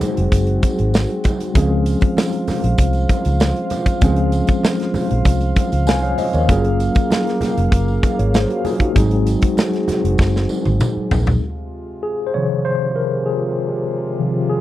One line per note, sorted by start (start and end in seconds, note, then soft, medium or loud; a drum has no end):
0.00 1.51 F#3 medium
0.00 1.51 G#3 medium
0.00 1.53 C4 medium
0.00 1.54 C4 medium
0.00 1.52 D#4 medium
0.00 1.54 F#4 medium
0.00 1.52 G#4 medium
0.00 muted fingered electric bass stroke medium
0.00 closed hi-hat medium
0.00 tambourine medium
0.00 muted conga soft
0.00 high conga medium
0.00 low conga medium
0.17 0.30 F1 loud
0.17 closed hi-hat medium
0.32 0.58 F#1 medium
0.32 kick medium
0.32 closed hi-hat medium
0.32 tambourine medium
0.47 closed hi-hat soft
0.63 kick medium
0.63 closed hi-hat medium
0.63 tambourine soft
0.63 muted conga soft
0.63 high conga medium
0.79 1.05 G#1 medium
0.79 closed hi-hat soft
0.94 snare loud
0.94 tambourine medium
0.94 muted conga soft
0.94 high conga medium
1.10 closed hi-hat soft
1.24 kick medium
1.24 closed hi-hat medium
1.24 tambourine medium
1.24 muted conga soft
1.24 high conga medium
1.24 low conga medium
1.40 closed hi-hat medium
1.40 tambourine soft
1.54 1.94 C#2 loud
1.54 3.97 F3 medium
1.54 3.98 G#3 medium
1.54 3.98 C4 medium
1.54 3.99 C#4 medium
1.54 6.45 F4 medium
1.54 3.99 G#4 medium
1.54 6.45 C5 medium
1.54 8.92 F5 medium
1.54 kick loud
1.54 closed hi-hat medium
1.54 tambourine medium
1.54 muted conga soft
1.54 low conga medium
1.86 closed hi-hat medium
1.86 tambourine medium
2.01 muted fingered electric bass stroke soft
2.01 kick medium
2.01 closed hi-hat medium
2.17 snare loud
2.17 tambourine medium
2.17 muted conga soft
2.17 high conga medium
2.33 closed hi-hat soft
2.47 muted fingered electric bass stroke soft
2.47 snare soft
2.47 open hi-hat medium
2.47 tambourine medium
2.47 muted conga soft
2.47 high conga medium
2.47 low conga medium
2.64 2.77 A#1 medium
2.64 closed hi-hat medium
2.78 3.05 C2 medium
2.78 kick medium
2.78 closed hi-hat medium
2.78 tambourine medium
2.78 muted conga soft
2.93 closed hi-hat soft
2.93 tambourine soft
3.09 kick medium
3.09 closed hi-hat medium
3.09 tambourine medium
3.09 muted conga soft
3.09 high conga medium
3.25 3.51 C#2 medium
3.25 closed hi-hat medium
3.25 tambourine soft
3.40 snare loud
3.40 tambourine medium
3.40 muted conga soft
3.40 high conga medium
3.56 closed hi-hat soft
3.70 closed hi-hat medium
3.70 tambourine medium
3.70 muted conga soft
3.70 high conga medium
3.70 low conga medium
3.86 kick medium
3.86 closed hi-hat medium
3.86 tambourine soft
4.01 4.41 C#2 loud
4.01 6.44 F3 medium
4.01 6.45 G#3 medium
4.01 6.45 C4 medium
4.01 6.45 C#4 medium
4.01 6.46 G#4 medium
4.01 kick loud
4.01 closed hi-hat medium
4.01 tambourine medium
4.01 muted conga soft
4.01 low conga medium
4.16 closed hi-hat soft
4.32 closed hi-hat medium
4.32 tambourine medium
4.32 muted conga soft
4.47 muted fingered electric bass stroke medium
4.47 kick medium
4.47 closed hi-hat medium
4.47 tambourine soft
4.63 snare loud
4.63 tambourine medium
4.63 muted conga soft
4.63 high conga medium
4.80 snare soft
4.80 closed hi-hat soft
4.94 muted fingered electric bass stroke soft
4.94 open hi-hat medium
4.94 tambourine soft
4.94 muted conga soft
4.94 high conga medium
4.94 low conga medium
5.11 5.24 A#1 medium
5.11 closed hi-hat medium
5.25 5.51 C2 loud
5.25 kick medium
5.25 closed hi-hat medium
5.25 tambourine medium
5.41 closed hi-hat soft
5.41 tambourine soft
5.56 kick medium
5.56 closed hi-hat medium
5.56 tambourine soft
5.56 muted conga soft
5.56 high conga medium
5.72 5.88 C#2 medium
5.72 closed hi-hat medium
5.72 tambourine soft
5.87 6.13 C2 medium
5.87 6.01 F5 medium
5.87 6.02 G#5 medium
5.87 snare loud
5.87 tambourine medium
5.87 muted conga soft
5.87 high conga medium
6.03 6.17 C#5 medium
6.03 6.17 F5 medium
6.03 closed hi-hat soft
6.18 6.33 C5 medium
6.18 6.33 D#5 medium
6.18 open hi-hat medium
6.18 tambourine medium
6.18 high conga medium
6.18 low conga medium
6.33 6.47 D#2 medium
6.33 6.63 A#4 medium
6.33 6.63 C#5 medium
6.33 closed hi-hat soft
6.33 tambourine soft
6.48 6.88 F#1 loud
6.48 8.91 F#3 medium
6.48 8.93 A#3 medium
6.48 8.91 A#3 medium
6.48 8.92 C#4 medium
6.48 8.01 F4 medium
6.48 8.93 G#4 medium
6.48 8.01 G#4 medium
6.48 kick loud
6.48 closed hi-hat medium
6.48 tambourine medium
6.48 muted conga soft
6.48 low conga medium
6.65 closed hi-hat soft
6.80 closed hi-hat medium
6.80 tambourine medium
6.95 muted fingered electric bass stroke soft
6.95 kick medium
6.95 closed hi-hat soft
6.95 tambourine soft
7.10 snare loud
7.10 tambourine medium
7.10 muted conga soft
7.10 high conga medium
7.27 snare soft
7.27 closed hi-hat soft
7.41 muted fingered electric bass stroke medium
7.41 snare soft
7.41 closed hi-hat medium
7.41 tambourine soft
7.41 muted conga soft
7.41 high conga medium
7.41 low conga medium
7.58 7.70 F1 loud
7.58 closed hi-hat medium
7.72 7.98 F#1 medium
7.72 kick medium
7.72 closed hi-hat medium
7.72 tambourine medium
7.72 muted conga soft
7.88 tambourine soft
8.03 kick medium
8.03 closed hi-hat medium
8.03 tambourine soft
8.03 muted conga soft
8.03 high conga medium
8.19 8.44 G#1 medium
8.19 8.34 A#4 medium
8.19 8.33 C#5 medium
8.19 closed hi-hat medium
8.34 8.49 G#4 medium
8.34 8.49 C5 medium
8.34 snare loud
8.34 tambourine medium
8.34 muted conga soft
8.34 high conga medium
8.49 8.64 F#4 medium
8.49 8.64 A#4 medium
8.49 closed hi-hat soft
8.65 8.80 F4 medium
8.65 8.79 G#4 medium
8.65 open hi-hat medium
8.65 tambourine medium
8.65 muted conga soft
8.65 high conga medium
8.65 low conga medium
8.80 8.95 D#4 medium
8.80 9.10 F#4 medium
8.80 kick medium
8.80 closed hi-hat soft
8.93 9.34 G#1 loud
8.93 11.37 F#3 medium
8.93 11.37 G#3 medium
8.93 11.38 C4 medium
8.93 11.26 C4 medium
8.93 11.38 D#4 medium
8.93 11.26 F#4 loud
8.93 11.26 G#4 medium
8.93 11.39 G#4 medium
8.93 kick loud
8.93 closed hi-hat medium
8.93 tambourine medium
8.93 muted conga soft
8.93 low conga medium
9.11 closed hi-hat soft
9.27 closed hi-hat medium
9.27 tambourine soft
9.27 muted conga soft
9.42 muted fingered electric bass stroke soft
9.42 kick medium
9.42 closed hi-hat medium
9.42 tambourine soft
9.57 snare loud
9.57 tambourine medium
9.57 muted conga soft
9.57 high conga medium
9.73 snare soft
9.73 closed hi-hat soft
9.88 muted fingered electric bass stroke soft
9.88 snare soft
9.88 closed hi-hat medium
9.88 tambourine soft
9.88 high conga medium
9.88 low conga medium
10.04 10.17 F1 medium
10.04 closed hi-hat medium
10.18 10.45 F#1 medium
10.18 kick medium
10.18 snare medium
10.18 tambourine medium
10.18 high conga medium
10.34 snare medium
10.34 tambourine soft
10.49 tambourine soft
10.49 high conga medium
10.65 10.78 G#1 medium
10.65 high tom medium
10.65 tambourine soft
10.80 mid tom medium
10.80 tambourine medium
10.80 muted conga soft
10.80 high conga medium
10.97 muted fingered electric bass stroke soft
11.11 11.37 A#1 loud
11.11 floor tom loud
11.11 tambourine medium
11.11 muted conga soft
11.11 high conga medium
11.11 low conga medium
11.26 floor tom medium
11.26 tambourine soft
11.43 14.61 C3 medium
11.43 14.61 G#3 medium
11.43 14.61 F4 medium
12.03 12.25 G#4 medium
12.27 12.34 C5 medium
12.34 12.76 C3 medium
12.34 12.75 D#3 medium
12.34 12.76 F3 medium
12.34 12.63 C#5 loud
12.65 12.94 C5 loud
12.96 13.10 A#4 medium
13.26 13.69 G#4 medium
14.19 14.61 C3 medium
14.19 14.61 D#3 medium
14.19 14.61 F3 medium
14.49 14.61 G#4 medium